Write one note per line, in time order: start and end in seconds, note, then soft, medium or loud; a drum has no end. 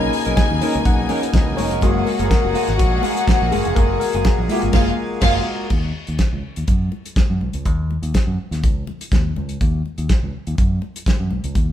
0.00 1.78 B2 medium
0.00 1.79 C#3 medium
0.00 0.62 A#3 medium
0.00 5.67 A#3 medium
0.00 0.12 C#4 medium
0.00 0.62 C#4 soft
0.00 0.12 D#4 medium
0.00 0.63 D#4 medium
0.00 1.78 D#4 medium
0.00 1.79 G#4 medium
0.00 0.12 A#4 medium
0.00 1.79 G#5 loud
0.00 1.84 A#5 loud
0.00 1.84 B5 loud
0.13 muted clean electric guitar stroke soft
0.13 open hi-hat medium
0.25 0.36 B1 loud
0.25 0.36 C#4 soft
0.25 0.37 D#4 soft
0.25 0.36 A#4 medium
0.25 closed hi-hat soft
0.37 0.87 G#5 loud
0.37 muted clean electric guitar stroke soft
0.37 kick loud
0.37 snare loud
0.37 closed hi-hat medium
0.37 high conga medium
0.50 0.60 D#2 loud
0.50 muted clean electric guitar stroke soft
0.61 0.84 A#3 soft
0.61 0.76 C#4 medium
0.61 0.84 C#4 soft
0.61 0.75 D#4 medium
0.61 0.84 D#4 medium
0.61 0.74 A#4 medium
0.61 open hi-hat medium
0.74 0.84 C#2 loud
0.74 muted clean electric guitar stroke medium
0.74 closed hi-hat soft
0.85 1.06 B1 medium
0.85 1.54 F#5 loud
0.85 kick loud
0.85 closed hi-hat medium
0.85 low conga medium
0.99 muted clean electric guitar stroke soft
1.09 1.25 C#4 medium
1.09 1.22 D#4 medium
1.09 1.21 A#4 loud
1.09 open hi-hat medium
1.09 muted conga medium
1.09 low conga medium
1.22 muted clean electric guitar stroke medium
1.22 closed hi-hat medium
1.33 1.54 C#2 loud
1.33 muted clean electric guitar stroke soft
1.33 kick loud
1.33 snare loud
1.33 closed hi-hat medium
1.33 high conga medium
1.46 muted clean electric guitar stroke medium
1.57 1.82 F1 medium
1.57 1.71 C#4 medium
1.57 1.70 D#4 medium
1.57 1.70 A#4 medium
1.57 2.08 C#5 loud
1.57 open hi-hat medium
1.57 high conga medium
1.71 1.82 C#4 medium
1.71 1.82 D#4 medium
1.71 1.82 A#4 medium
1.71 closed hi-hat soft
1.81 2.02 F#1 loud
1.81 5.67 F#3 medium
1.81 2.15 G#3 medium
1.81 5.67 G#3 medium
1.81 2.05 A#3 medium
1.81 2.15 A#3 soft
1.81 2.05 F4 loud
1.81 4.70 F#4 medium
1.81 2.16 F#4 medium
1.81 5.67 G#4 medium
1.81 2.05 G#4 medium
1.81 4.70 F#5 loud
1.81 kick medium
1.81 closed hi-hat medium
1.81 muted conga medium
2.06 2.28 A#4 medium
2.06 muted clean electric guitar stroke soft
2.06 open hi-hat medium
2.06 muted conga soft
2.19 2.29 F#1 loud
2.19 2.29 A#3 medium
2.19 2.30 F4 medium
2.19 2.30 G#4 medium
2.19 closed hi-hat soft
2.29 2.80 A#4 medium
2.29 muted clean electric guitar stroke soft
2.29 kick loud
2.29 snare loud
2.29 closed hi-hat medium
2.29 high conga medium
2.44 2.54 F1 loud
2.44 muted clean electric guitar stroke soft
2.55 2.70 A#3 medium
2.55 2.67 F4 medium
2.55 2.67 G#4 medium
2.55 open hi-hat medium
2.68 2.78 G#1 loud
2.68 muted clean electric guitar stroke medium
2.68 snare soft
2.68 closed hi-hat soft
2.78 3.00 A#1 loud
2.78 3.48 F#4 medium
2.78 kick loud
2.78 closed hi-hat medium
2.92 muted clean electric guitar stroke medium
3.02 3.18 A#3 medium
3.02 3.15 F4 medium
3.02 3.15 G#4 medium
3.02 open hi-hat medium
3.02 muted conga medium
3.16 muted clean electric guitar stroke soft
3.16 closed hi-hat medium
3.27 muted clean electric guitar stroke soft
3.27 kick loud
3.27 snare loud
3.27 closed hi-hat medium
3.27 high conga medium
3.41 3.51 A#1 medium
3.41 muted clean electric guitar stroke soft
3.51 3.63 F#1 medium
3.51 3.65 A#3 medium
3.51 3.65 F4 medium
3.51 3.74 G#4 medium
3.51 3.64 G#4 loud
3.51 open hi-hat medium
3.51 high conga medium
3.65 3.75 F1 medium
3.65 3.76 A#3 medium
3.65 3.75 F4 medium
3.65 3.76 G#4 medium
3.65 closed hi-hat soft
3.75 3.97 F#1 loud
3.75 3.99 A#3 medium
3.75 3.99 F4 medium
3.75 3.99 G#4 medium
3.75 3.98 A#4 medium
3.75 kick loud
3.75 closed hi-hat medium
3.75 muted conga medium
4.00 4.69 A#4 medium
4.00 muted clean electric guitar stroke soft
4.00 open hi-hat medium
4.00 muted conga soft
4.13 4.23 F#1 loud
4.13 4.25 A#3 medium
4.13 4.25 F4 medium
4.13 4.25 G#4 medium
4.13 closed hi-hat soft
4.25 muted clean electric guitar stroke soft
4.25 kick loud
4.25 snare loud
4.25 closed hi-hat medium
4.25 high conga medium
4.38 4.48 A#1 medium
4.38 muted clean electric guitar stroke soft
4.48 4.81 G#3 medium
4.48 4.82 A#3 medium
4.48 4.71 A#3 medium
4.48 4.82 F4 medium
4.48 4.63 F4 loud
4.48 open hi-hat medium
4.52 4.62 G#4 medium
4.62 4.73 G#1 loud
4.62 muted clean electric guitar stroke soft
4.62 closed hi-hat soft
4.72 4.90 F#1 loud
4.72 4.91 A#3 loud
4.72 4.90 F4 medium
4.72 4.91 F4 loud
4.72 4.91 G#4 loud
4.72 4.90 F5 medium
4.72 kick loud
4.72 snare loud
4.72 crash medium
5.21 5.39 F#1 loud
5.21 5.40 A#3 loud
5.21 5.39 F4 loud
5.21 5.40 F4 medium
5.21 5.40 G#4 medium
5.21 5.39 F5 loud
5.21 kick loud
5.21 snare loud
5.21 crash medium
5.70 5.91 D#2 medium
5.70 kick medium
5.70 crash medium
5.70 muted conga soft
6.07 6.18 D#2 medium
6.07 closed hi-hat soft
6.19 kick medium
6.19 snare loud
6.19 closed hi-hat medium
6.19 high conga medium
6.33 6.42 C#2 medium
6.56 6.67 D#2 medium
6.56 closed hi-hat soft
6.68 6.88 F#2 medium
6.68 kick loud
6.68 closed hi-hat medium
6.68 low conga medium
6.92 muted conga soft
7.06 closed hi-hat medium
7.16 kick loud
7.16 snare loud
7.16 closed hi-hat medium
7.16 high conga medium
7.30 7.39 F#2 medium
7.41 7.52 B1 medium
7.41 high conga medium
7.53 7.65 C#2 medium
7.53 closed hi-hat soft
7.65 7.97 D#2 medium
7.65 kick medium
7.65 closed hi-hat soft
7.65 muted conga soft
7.90 muted conga soft
8.02 8.12 D#2 medium
8.02 closed hi-hat soft
8.14 kick medium
8.14 snare loud
8.14 closed hi-hat medium
8.14 high conga medium
8.27 8.37 F#2 medium
8.51 8.61 D#2 medium
8.51 snare soft
8.51 closed hi-hat soft
8.63 8.84 C#2 medium
8.63 kick loud
8.63 closed hi-hat medium
8.63 low conga medium
8.87 muted conga medium
8.87 low conga medium
9.01 closed hi-hat medium
9.12 9.32 D#2 medium
9.12 kick loud
9.12 snare medium
9.12 closed hi-hat medium
9.12 high conga medium
9.36 9.57 C#2 medium
9.36 high conga medium
9.49 closed hi-hat soft
9.61 9.81 D#2 medium
9.61 kick medium
9.61 closed hi-hat medium
9.61 muted conga medium
9.86 muted conga soft
9.98 10.08 D#2 medium
9.98 closed hi-hat soft
10.09 kick loud
10.09 snare loud
10.09 closed hi-hat medium
10.09 high conga medium
10.23 10.32 C#2 medium
10.47 10.56 D#2 medium
10.47 closed hi-hat soft
10.58 10.78 F#2 medium
10.58 kick loud
10.58 closed hi-hat medium
10.58 low conga medium
10.82 muted conga medium
10.96 closed hi-hat medium
11.06 kick loud
11.06 snare loud
11.06 closed hi-hat medium
11.06 high conga medium
11.20 11.29 F#2 medium
11.31 11.42 B1 medium
11.31 high conga medium
11.44 11.54 C#2 medium
11.44 closed hi-hat soft
11.55 11.72 D#2 medium
11.55 kick medium
11.55 closed hi-hat soft
11.55 muted conga soft